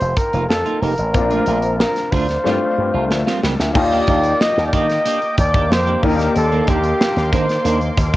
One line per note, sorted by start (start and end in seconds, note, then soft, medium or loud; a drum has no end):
0.00 0.13 F1 medium
0.00 1.10 A#3 medium
0.00 1.10 C4 medium
0.00 1.11 D#4 medium
0.00 1.11 G4 medium
0.00 0.19 C5 medium
0.00 closed hi-hat soft
0.17 0.48 A#4 medium
0.17 muted clean electric guitar stroke soft
0.17 kick medium
0.17 closed hi-hat medium
0.33 0.46 F1 medium
0.33 0.44 A#3 medium
0.33 0.44 D#4 medium
0.33 0.43 F4 medium
0.33 closed hi-hat soft
0.49 0.62 F2 medium
0.49 0.83 A4 medium
0.49 muted clean electric guitar stroke soft
0.49 snare loud
0.65 0.79 A#3 medium
0.65 0.79 D#4 medium
0.65 0.79 F4 medium
0.65 closed hi-hat soft
0.81 0.94 F1 medium
0.81 0.92 A#3 medium
0.81 0.93 D#4 medium
0.81 0.93 G4 medium
0.81 1.78 A#4 medium
0.81 open hi-hat medium
0.98 1.14 A1 medium
0.98 muted clean electric guitar stroke soft
0.98 closed hi-hat medium
1.14 1.39 A#1 medium
1.14 2.42 A#3 medium
1.14 2.42 C4 medium
1.14 2.43 D4 medium
1.14 2.43 F4 medium
1.14 muted clean electric guitar stroke soft
1.14 kick loud
1.14 closed hi-hat medium
1.31 1.44 A3 medium
1.31 1.44 D4 medium
1.31 1.44 F4 medium
1.31 closed hi-hat soft
1.46 1.84 A#1 medium
1.46 1.57 A3 medium
1.46 1.58 D4 medium
1.46 1.58 F4 medium
1.46 closed hi-hat medium
1.62 muted clean electric guitar stroke soft
1.62 closed hi-hat soft
1.79 2.13 A#4 medium
1.79 snare loud
1.96 muted clean electric guitar stroke soft
1.96 snare soft
1.96 closed hi-hat soft
2.12 2.37 D2 medium
2.12 2.26 A3 medium
2.12 2.26 D4 medium
2.12 2.26 F4 loud
2.12 3.42 C5 medium
2.12 kick medium
2.12 open hi-hat medium
2.29 snare soft
2.29 closed hi-hat soft
2.44 2.58 G2 medium
2.44 2.58 G3 medium
2.44 3.72 A3 medium
2.44 3.72 C4 soft
2.44 2.59 C4 medium
2.44 3.73 D4 medium
2.44 3.73 F4 medium
2.44 2.59 F4 medium
2.44 snare soft
2.62 muted clean electric guitar stroke soft
2.78 2.90 G2 medium
2.78 muted clean electric guitar stroke soft
2.94 3.11 C2 medium
2.94 3.05 G3 soft
2.94 3.04 C4 medium
2.94 3.04 F4 medium
3.11 3.23 D2 medium
3.11 muted clean electric guitar stroke soft
3.11 snare medium
3.27 3.40 G3 medium
3.27 3.40 C4 medium
3.27 3.40 F4 medium
3.27 snare medium
3.43 3.55 C#2 medium
3.43 3.53 G3 medium
3.43 3.53 C4 medium
3.43 3.54 G4 medium
3.43 snare medium
3.60 3.72 D2 medium
3.60 snare medium
3.74 4.00 D#2 medium
3.74 5.98 A#3 medium
3.74 8.17 A#3 medium
3.74 5.98 D#4 medium
3.74 5.99 F4 medium
3.74 5.99 G4 medium
3.74 4.42 D5 medium
3.74 6.01 G5 medium
3.74 8.17 D6 medium
3.74 muted clean electric guitar stroke soft
3.74 kick loud
3.74 crash medium
3.92 4.05 A#3 medium
3.92 4.05 D4 medium
3.92 4.05 G4 medium
3.92 closed hi-hat soft
4.07 4.32 D#2 loud
4.07 4.18 A#3 medium
4.07 4.18 D4 medium
4.07 4.19 G4 medium
4.07 kick medium
4.07 closed hi-hat medium
4.23 muted clean electric guitar stroke soft
4.23 closed hi-hat soft
4.41 4.66 D#5 loud
4.41 snare loud
4.56 4.69 D#2 loud
4.56 muted clean electric guitar stroke medium
4.56 snare soft
4.66 4.75 D5 medium
4.72 4.97 D#3 medium
4.72 4.86 A#3 medium
4.72 4.86 D4 medium
4.72 4.86 G4 medium
4.72 5.38 D#5 loud
4.72 kick medium
4.72 closed hi-hat medium
4.89 muted clean electric guitar stroke medium
4.89 snare soft
4.89 closed hi-hat soft
5.05 5.18 A#3 medium
5.05 5.18 D4 medium
5.05 5.19 G4 medium
5.05 closed hi-hat medium
5.22 muted clean electric guitar stroke soft
5.22 closed hi-hat soft
5.37 5.71 D#2 medium
5.37 5.73 D5 medium
5.37 muted clean electric guitar stroke soft
5.37 kick medium
5.37 closed hi-hat medium
5.54 5.65 A#3 soft
5.54 5.65 D4 medium
5.54 5.64 G4 medium
5.54 kick medium
5.54 closed hi-hat soft
5.70 5.95 F2 medium
5.70 6.03 C5 medium
5.70 muted clean electric guitar stroke soft
5.70 snare loud
5.87 6.00 A#3 medium
5.87 6.00 D4 medium
5.87 6.00 G4 medium
5.87 closed hi-hat soft
6.02 6.27 D#2 medium
6.02 6.13 D#3 medium
6.02 8.17 A#3 medium
6.02 6.13 A#3 medium
6.02 8.17 D4 medium
6.02 8.17 D#4 medium
6.02 6.14 D#4 medium
6.02 8.17 G4 medium
6.02 6.34 A#4 medium
6.02 8.17 C6 medium
6.02 kick loud
6.02 open hi-hat medium
6.19 muted clean electric guitar stroke soft
6.19 snare soft
6.19 closed hi-hat medium
6.35 6.60 D#2 medium
6.35 6.70 A4 medium
6.35 muted clean electric guitar stroke soft
6.35 closed hi-hat medium
6.51 6.65 D#3 medium
6.51 6.65 A#3 medium
6.51 6.64 D4 medium
6.51 closed hi-hat soft
6.67 6.92 D#2 medium
6.67 6.78 D#3 medium
6.67 6.78 A#3 medium
6.67 6.79 D4 medium
6.67 7.33 G4 medium
6.67 kick medium
6.67 closed hi-hat medium
6.84 muted clean electric guitar stroke soft
6.84 closed hi-hat soft
7.01 snare loud
7.16 7.34 D#2 loud
7.16 muted clean electric guitar stroke soft
7.16 snare soft
7.16 closed hi-hat soft
7.33 7.46 D#3 medium
7.33 7.57 D#3 medium
7.33 7.46 A#3 medium
7.33 7.46 D4 medium
7.33 7.94 C5 medium
7.33 kick medium
7.33 closed hi-hat medium
7.49 muted clean electric guitar stroke soft
7.49 snare soft
7.49 closed hi-hat soft
7.65 7.89 D#2 loud
7.65 7.78 D#3 medium
7.65 7.78 A#3 medium
7.65 7.79 D4 medium
7.65 closed hi-hat medium
7.81 closed hi-hat soft
7.97 8.17 D#2 medium
7.97 muted clean electric guitar stroke soft
7.97 kick medium
7.97 closed hi-hat medium
8.14 8.17 D4 medium